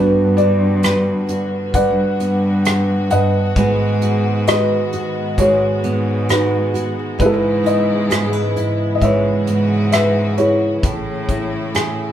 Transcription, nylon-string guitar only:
0.00 2.65 G2 medium
0.00 1.75 G3 medium
0.00 2.20 B3 medium
0.00 0.39 F#4 medium
0.39 1.29 F#4 medium
0.85 3.58 B4 medium
1.29 3.51 F#4 medium
2.20 3.57 B3 soft
3.11 3.56 G2 medium
3.56 7.15 G#2 medium
3.56 5.37 G#3 medium
3.56 5.83 B3 medium
3.56 4.01 F#4 medium
3.56 4.47 B4 medium
4.02 4.93 F#4 medium
4.48 7.15 B4 medium
4.94 6.28 F#4 medium
5.38 8.88 G#3 medium
5.84 9.46 B3 medium
6.29 6.73 F#4 medium
6.74 7.14 F#4 medium
7.19 10.78 G#2 medium
7.64 8.56 E4 medium
8.10 8.33 G#4 medium
8.33 9.92 B4 medium
8.56 10.37 E4 medium
9.00 10.77 G#3 medium
9.47 10.84 B3 soft
9.93 10.78 B4 medium
10.38 10.78 E4 medium
10.84 12.12 A2 medium
11.30 12.12 E4 medium
11.75 12.12 G#4 medium

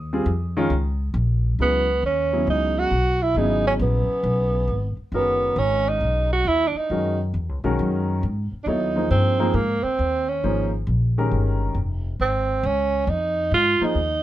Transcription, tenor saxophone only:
1.62 2.02 B3 medium
2.06 2.46 C#4 medium
2.50 2.80 D#4 medium
2.78 3.24 F#4 medium
3.23 3.39 E4 medium
3.37 3.66 D#4 medium
3.67 3.74 C#4 medium
3.83 4.95 B3 medium
5.15 5.60 B3 medium
5.59 5.90 C#4 medium
5.89 6.32 D#4 medium
6.33 6.49 F#4 medium
6.48 6.69 E4 loud
6.67 6.79 D4 medium
6.77 7.20 D#4 medium
8.64 8.69 D4 medium
8.64 9.11 D#4 medium
9.11 9.57 C4 medium
9.55 9.85 A#3 medium
9.83 10.30 C4 medium
10.29 10.73 C#4 medium
12.21 12.68 C4 medium
12.66 13.05 C#4 medium
13.05 13.11 C#4 medium
13.10 13.53 D#4 medium
13.54 13.86 F4 loud
13.85 14.23 D#4 medium

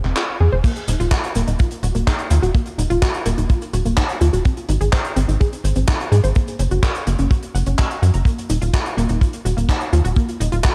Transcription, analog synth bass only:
0.04 0.13 F1 medium
0.40 0.49 F2 medium
0.52 0.61 F1 medium
0.88 0.97 D#1 loud
1.00 1.09 D#1 medium
1.36 1.44 D#1 medium
1.47 1.56 D#1 medium
1.83 1.92 D#1 loud
1.95 2.04 D#1 medium
2.31 2.40 D#2 loud
2.42 2.51 D#1 medium
2.78 2.87 D#1 loud
2.90 2.99 D#1 medium
3.26 3.35 D#1 medium
3.38 3.47 D#1 medium
3.73 3.82 D#1 loud
3.85 3.94 D#1 medium
4.21 4.30 D#2 medium
4.33 4.42 D#1 medium
4.69 4.78 G#1 loud
4.81 4.90 G#1 medium
5.16 5.25 G#1 medium
5.28 5.37 G#1 medium
5.64 5.73 G#1 loud
5.76 5.85 G#1 medium
6.12 6.21 G#2 medium
6.24 6.33 G#1 medium
6.59 6.68 F#1 loud
6.71 6.80 F#1 medium
7.07 7.16 F#1 loud
7.19 7.28 F#1 medium
7.55 7.64 F#1 loud
7.67 7.75 F#1 medium
8.02 8.11 F#2 loud
8.14 8.23 F#1 medium
8.50 8.59 D#1 loud
8.62 8.71 D#1 medium
8.97 9.06 D#1 loud
9.10 9.18 D#1 medium
9.45 9.54 D#1 loud
9.57 9.66 D#1 medium
9.93 10.02 D#2 loud
10.05 10.14 D#1 medium
10.40 10.49 D#1 medium
10.52 10.61 D#1 medium

